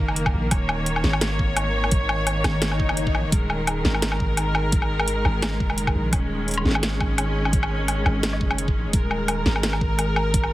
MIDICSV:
0, 0, Header, 1, 5, 480
1, 0, Start_track
1, 0, Key_signature, -6, "minor"
1, 0, Tempo, 350877
1, 703, Time_signature, 4, 2, 24, 8
1, 14406, End_track
2, 0, Start_track
2, 0, Title_t, "String section"
2, 0, Program_c, 0, 48
2, 0, Note_on_c, 0, 51, 78
2, 0, Note_on_c, 0, 58, 75
2, 0, Note_on_c, 0, 70, 86
2, 692, Note_off_c, 0, 70, 0
2, 703, Note_on_c, 0, 73, 91
2, 4484, Note_off_c, 0, 58, 0
2, 4531, Note_off_c, 0, 73, 0
2, 4545, Note_on_c, 0, 56, 75
2, 4545, Note_on_c, 0, 70, 90
2, 8372, Note_off_c, 0, 70, 0
2, 8382, Note_on_c, 0, 61, 90
2, 12210, Note_off_c, 0, 61, 0
2, 12225, Note_on_c, 0, 70, 92
2, 14406, Note_off_c, 0, 51, 0
2, 14406, Note_off_c, 0, 56, 0
2, 14406, Note_off_c, 0, 70, 0
2, 14406, End_track
3, 0, Start_track
3, 0, Title_t, "808-style bass"
3, 0, Program_c, 1, 38
3, 0, Note_on_c, 1, 30, 97
3, 451, Note_off_c, 1, 30, 0
3, 464, Note_on_c, 1, 34, 85
3, 686, Note_off_c, 1, 34, 0
3, 705, Note_on_c, 1, 27, 98
3, 1410, Note_off_c, 1, 27, 0
3, 1423, Note_on_c, 1, 32, 107
3, 3329, Note_off_c, 1, 32, 0
3, 3342, Note_on_c, 1, 32, 100
3, 3825, Note_on_c, 1, 30, 96
3, 3845, Note_off_c, 1, 32, 0
3, 4304, Note_on_c, 1, 34, 89
3, 4325, Note_off_c, 1, 30, 0
3, 4439, Note_on_c, 1, 27, 86
3, 4459, Note_off_c, 1, 34, 0
3, 4536, Note_off_c, 1, 27, 0
3, 4547, Note_on_c, 1, 27, 101
3, 5251, Note_off_c, 1, 27, 0
3, 5269, Note_on_c, 1, 32, 101
3, 7172, Note_off_c, 1, 32, 0
3, 7183, Note_on_c, 1, 32, 112
3, 7666, Note_on_c, 1, 30, 92
3, 7686, Note_off_c, 1, 32, 0
3, 8131, Note_off_c, 1, 30, 0
3, 8143, Note_on_c, 1, 34, 80
3, 8366, Note_off_c, 1, 34, 0
3, 8382, Note_on_c, 1, 27, 99
3, 9089, Note_off_c, 1, 27, 0
3, 9102, Note_on_c, 1, 32, 106
3, 11009, Note_off_c, 1, 32, 0
3, 11025, Note_on_c, 1, 32, 103
3, 11504, Note_on_c, 1, 30, 99
3, 11524, Note_off_c, 1, 32, 0
3, 11982, Note_on_c, 1, 34, 96
3, 12002, Note_off_c, 1, 30, 0
3, 12116, Note_on_c, 1, 27, 91
3, 12136, Note_off_c, 1, 34, 0
3, 12215, Note_off_c, 1, 27, 0
3, 12224, Note_on_c, 1, 27, 97
3, 12930, Note_off_c, 1, 27, 0
3, 12943, Note_on_c, 1, 32, 113
3, 14406, Note_off_c, 1, 32, 0
3, 14406, End_track
4, 0, Start_track
4, 0, Title_t, "Swell"
4, 0, Program_c, 2, 103
4, 3587, Note_on_c, 2, 60, 59
4, 4545, Note_off_c, 2, 60, 0
4, 14406, End_track
5, 0, Start_track
5, 0, Title_t, "Drums"
5, 115, Note_on_c, 9, 77, 50
5, 223, Note_on_c, 9, 42, 65
5, 252, Note_off_c, 9, 77, 0
5, 355, Note_on_c, 9, 77, 77
5, 356, Note_on_c, 9, 36, 62
5, 360, Note_off_c, 9, 42, 0
5, 492, Note_off_c, 9, 77, 0
5, 493, Note_off_c, 9, 36, 0
5, 701, Note_on_c, 9, 42, 84
5, 701, Note_on_c, 9, 77, 52
5, 704, Note_on_c, 9, 36, 110
5, 838, Note_off_c, 9, 42, 0
5, 838, Note_off_c, 9, 77, 0
5, 841, Note_off_c, 9, 36, 0
5, 942, Note_on_c, 9, 77, 87
5, 1079, Note_off_c, 9, 77, 0
5, 1181, Note_on_c, 9, 42, 65
5, 1315, Note_on_c, 9, 77, 53
5, 1318, Note_off_c, 9, 42, 0
5, 1421, Note_on_c, 9, 38, 58
5, 1452, Note_off_c, 9, 77, 0
5, 1551, Note_on_c, 9, 77, 82
5, 1558, Note_off_c, 9, 38, 0
5, 1660, Note_on_c, 9, 38, 111
5, 1660, Note_on_c, 9, 42, 83
5, 1687, Note_off_c, 9, 77, 0
5, 1797, Note_off_c, 9, 38, 0
5, 1797, Note_off_c, 9, 42, 0
5, 1904, Note_on_c, 9, 36, 60
5, 2041, Note_off_c, 9, 36, 0
5, 2141, Note_on_c, 9, 42, 69
5, 2141, Note_on_c, 9, 77, 84
5, 2278, Note_off_c, 9, 42, 0
5, 2278, Note_off_c, 9, 77, 0
5, 2514, Note_on_c, 9, 77, 58
5, 2619, Note_on_c, 9, 42, 82
5, 2624, Note_on_c, 9, 36, 115
5, 2651, Note_off_c, 9, 77, 0
5, 2756, Note_off_c, 9, 42, 0
5, 2761, Note_off_c, 9, 36, 0
5, 2860, Note_on_c, 9, 77, 83
5, 2997, Note_off_c, 9, 77, 0
5, 3101, Note_on_c, 9, 42, 64
5, 3101, Note_on_c, 9, 77, 55
5, 3238, Note_off_c, 9, 42, 0
5, 3238, Note_off_c, 9, 77, 0
5, 3342, Note_on_c, 9, 38, 59
5, 3342, Note_on_c, 9, 42, 36
5, 3342, Note_on_c, 9, 77, 80
5, 3479, Note_off_c, 9, 38, 0
5, 3479, Note_off_c, 9, 42, 0
5, 3479, Note_off_c, 9, 77, 0
5, 3580, Note_on_c, 9, 38, 118
5, 3580, Note_on_c, 9, 42, 82
5, 3714, Note_on_c, 9, 77, 53
5, 3717, Note_off_c, 9, 38, 0
5, 3717, Note_off_c, 9, 42, 0
5, 3825, Note_on_c, 9, 36, 62
5, 3851, Note_off_c, 9, 77, 0
5, 3955, Note_on_c, 9, 77, 78
5, 3962, Note_off_c, 9, 36, 0
5, 4064, Note_on_c, 9, 42, 66
5, 4091, Note_off_c, 9, 77, 0
5, 4197, Note_on_c, 9, 36, 60
5, 4200, Note_off_c, 9, 42, 0
5, 4305, Note_on_c, 9, 77, 54
5, 4334, Note_off_c, 9, 36, 0
5, 4441, Note_off_c, 9, 77, 0
5, 4546, Note_on_c, 9, 36, 121
5, 4546, Note_on_c, 9, 42, 84
5, 4683, Note_off_c, 9, 36, 0
5, 4683, Note_off_c, 9, 42, 0
5, 4785, Note_on_c, 9, 77, 56
5, 4922, Note_off_c, 9, 77, 0
5, 5026, Note_on_c, 9, 42, 69
5, 5026, Note_on_c, 9, 77, 84
5, 5163, Note_off_c, 9, 42, 0
5, 5163, Note_off_c, 9, 77, 0
5, 5265, Note_on_c, 9, 38, 61
5, 5397, Note_on_c, 9, 77, 53
5, 5402, Note_off_c, 9, 38, 0
5, 5504, Note_on_c, 9, 38, 118
5, 5504, Note_on_c, 9, 42, 81
5, 5533, Note_off_c, 9, 77, 0
5, 5633, Note_on_c, 9, 77, 80
5, 5641, Note_off_c, 9, 38, 0
5, 5641, Note_off_c, 9, 42, 0
5, 5746, Note_on_c, 9, 36, 65
5, 5769, Note_off_c, 9, 77, 0
5, 5883, Note_off_c, 9, 36, 0
5, 5982, Note_on_c, 9, 42, 72
5, 5982, Note_on_c, 9, 77, 55
5, 6119, Note_off_c, 9, 42, 0
5, 6119, Note_off_c, 9, 77, 0
5, 6221, Note_on_c, 9, 77, 86
5, 6358, Note_off_c, 9, 77, 0
5, 6462, Note_on_c, 9, 42, 81
5, 6465, Note_on_c, 9, 36, 126
5, 6594, Note_on_c, 9, 77, 54
5, 6599, Note_off_c, 9, 42, 0
5, 6602, Note_off_c, 9, 36, 0
5, 6731, Note_off_c, 9, 77, 0
5, 6833, Note_on_c, 9, 77, 79
5, 6944, Note_on_c, 9, 42, 70
5, 6970, Note_off_c, 9, 77, 0
5, 7080, Note_off_c, 9, 42, 0
5, 7182, Note_on_c, 9, 77, 53
5, 7319, Note_off_c, 9, 77, 0
5, 7421, Note_on_c, 9, 38, 127
5, 7421, Note_on_c, 9, 42, 87
5, 7421, Note_on_c, 9, 77, 84
5, 7558, Note_off_c, 9, 38, 0
5, 7558, Note_off_c, 9, 42, 0
5, 7558, Note_off_c, 9, 77, 0
5, 7664, Note_on_c, 9, 36, 67
5, 7794, Note_on_c, 9, 77, 51
5, 7801, Note_off_c, 9, 36, 0
5, 7903, Note_on_c, 9, 42, 72
5, 7931, Note_off_c, 9, 77, 0
5, 8035, Note_on_c, 9, 36, 62
5, 8035, Note_on_c, 9, 77, 77
5, 8039, Note_off_c, 9, 42, 0
5, 8171, Note_off_c, 9, 77, 0
5, 8172, Note_off_c, 9, 36, 0
5, 8382, Note_on_c, 9, 42, 83
5, 8382, Note_on_c, 9, 77, 50
5, 8383, Note_on_c, 9, 36, 125
5, 8519, Note_off_c, 9, 36, 0
5, 8519, Note_off_c, 9, 42, 0
5, 8519, Note_off_c, 9, 77, 0
5, 8863, Note_on_c, 9, 42, 30
5, 8907, Note_off_c, 9, 42, 0
5, 8907, Note_on_c, 9, 42, 42
5, 8942, Note_off_c, 9, 42, 0
5, 8942, Note_on_c, 9, 42, 53
5, 8995, Note_on_c, 9, 77, 52
5, 9079, Note_off_c, 9, 42, 0
5, 9104, Note_on_c, 9, 38, 29
5, 9132, Note_off_c, 9, 77, 0
5, 9148, Note_off_c, 9, 38, 0
5, 9148, Note_on_c, 9, 38, 38
5, 9184, Note_off_c, 9, 38, 0
5, 9184, Note_on_c, 9, 38, 46
5, 9236, Note_on_c, 9, 77, 81
5, 9320, Note_off_c, 9, 38, 0
5, 9343, Note_on_c, 9, 38, 127
5, 9343, Note_on_c, 9, 42, 81
5, 9373, Note_off_c, 9, 77, 0
5, 9479, Note_off_c, 9, 38, 0
5, 9479, Note_off_c, 9, 42, 0
5, 9583, Note_on_c, 9, 36, 66
5, 9584, Note_on_c, 9, 77, 50
5, 9720, Note_off_c, 9, 36, 0
5, 9721, Note_off_c, 9, 77, 0
5, 9823, Note_on_c, 9, 42, 70
5, 9823, Note_on_c, 9, 77, 77
5, 9960, Note_off_c, 9, 42, 0
5, 9960, Note_off_c, 9, 77, 0
5, 10196, Note_on_c, 9, 77, 53
5, 10302, Note_on_c, 9, 42, 80
5, 10303, Note_on_c, 9, 36, 121
5, 10333, Note_off_c, 9, 77, 0
5, 10436, Note_on_c, 9, 77, 80
5, 10439, Note_off_c, 9, 36, 0
5, 10439, Note_off_c, 9, 42, 0
5, 10573, Note_off_c, 9, 77, 0
5, 10783, Note_on_c, 9, 42, 69
5, 10783, Note_on_c, 9, 77, 50
5, 10920, Note_off_c, 9, 42, 0
5, 10920, Note_off_c, 9, 77, 0
5, 11024, Note_on_c, 9, 77, 74
5, 11161, Note_off_c, 9, 77, 0
5, 11262, Note_on_c, 9, 38, 127
5, 11262, Note_on_c, 9, 42, 81
5, 11397, Note_on_c, 9, 77, 51
5, 11399, Note_off_c, 9, 38, 0
5, 11399, Note_off_c, 9, 42, 0
5, 11503, Note_on_c, 9, 36, 70
5, 11533, Note_off_c, 9, 77, 0
5, 11636, Note_on_c, 9, 77, 74
5, 11640, Note_off_c, 9, 36, 0
5, 11743, Note_on_c, 9, 42, 66
5, 11773, Note_off_c, 9, 77, 0
5, 11875, Note_on_c, 9, 36, 62
5, 11879, Note_off_c, 9, 42, 0
5, 12011, Note_off_c, 9, 36, 0
5, 12221, Note_on_c, 9, 42, 80
5, 12223, Note_on_c, 9, 36, 120
5, 12358, Note_off_c, 9, 42, 0
5, 12359, Note_off_c, 9, 36, 0
5, 12460, Note_on_c, 9, 77, 52
5, 12597, Note_off_c, 9, 77, 0
5, 12699, Note_on_c, 9, 42, 64
5, 12699, Note_on_c, 9, 77, 76
5, 12836, Note_off_c, 9, 42, 0
5, 12836, Note_off_c, 9, 77, 0
5, 12939, Note_on_c, 9, 38, 59
5, 13074, Note_on_c, 9, 77, 51
5, 13076, Note_off_c, 9, 38, 0
5, 13179, Note_on_c, 9, 38, 124
5, 13179, Note_on_c, 9, 42, 80
5, 13211, Note_off_c, 9, 77, 0
5, 13312, Note_on_c, 9, 77, 75
5, 13316, Note_off_c, 9, 38, 0
5, 13316, Note_off_c, 9, 42, 0
5, 13423, Note_on_c, 9, 36, 68
5, 13449, Note_off_c, 9, 77, 0
5, 13560, Note_off_c, 9, 36, 0
5, 13661, Note_on_c, 9, 42, 64
5, 13661, Note_on_c, 9, 77, 52
5, 13798, Note_off_c, 9, 42, 0
5, 13798, Note_off_c, 9, 77, 0
5, 13902, Note_on_c, 9, 77, 76
5, 14039, Note_off_c, 9, 77, 0
5, 14144, Note_on_c, 9, 36, 110
5, 14144, Note_on_c, 9, 42, 81
5, 14276, Note_on_c, 9, 77, 53
5, 14281, Note_off_c, 9, 36, 0
5, 14281, Note_off_c, 9, 42, 0
5, 14406, Note_off_c, 9, 77, 0
5, 14406, End_track
0, 0, End_of_file